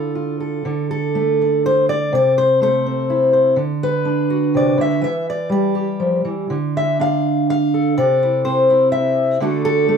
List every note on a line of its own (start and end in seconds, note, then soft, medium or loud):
0.00 0.64 D3 medium
0.00 0.63 E4 soft
0.00 0.14 F4 soft
0.00 0.39 A4 medium
0.15 0.63 F4 soft
0.40 0.90 A4 soft
0.65 2.13 D3 medium
0.91 1.65 A4 medium
1.15 2.61 A3 medium
1.42 2.11 D4 soft
1.66 1.89 C5 medium
1.89 2.13 D5 loud
2.13 3.54 C3 medium
2.13 2.38 D5 medium
2.38 2.62 C5 medium
2.61 3.54 A3 medium
2.61 3.32 C5 medium
2.86 3.58 C4 soft
3.10 3.57 E4 soft
3.33 3.54 C5 soft
3.56 4.77 D3 medium
3.83 5.03 B4 medium
4.05 5.05 D4 medium
4.30 4.99 F#4 soft
4.54 4.78 C3 medium
4.54 4.79 D5 medium
4.78 5.02 D3 medium
4.78 5.03 E5 medium
5.02 6.23 E3 medium
5.02 5.27 E5 medium
5.30 5.51 D5 medium
5.49 6.49 G3 medium
5.49 6.51 D5 medium
5.75 6.47 G4 soft
6.00 6.24 F3 medium
6.25 6.50 E3 medium
6.50 7.97 D3 medium
6.77 7.01 E5 medium
7.00 7.95 D4 medium
7.00 7.49 F5 medium
7.50 7.97 F5 loud
7.74 9.42 A4 soft
7.98 9.38 C3 medium
7.98 8.44 D5 medium
8.23 8.69 E4 soft
8.45 9.38 C4 medium
8.45 8.92 C5 medium
8.70 9.38 E4 soft
8.92 9.40 E5 medium
9.40 9.97 D3 medium
9.40 9.88 A3 medium
9.40 9.97 D4 medium
9.40 9.97 F#4 medium
9.40 9.65 A4 soft
9.65 9.97 A4 medium
9.89 9.97 A3 medium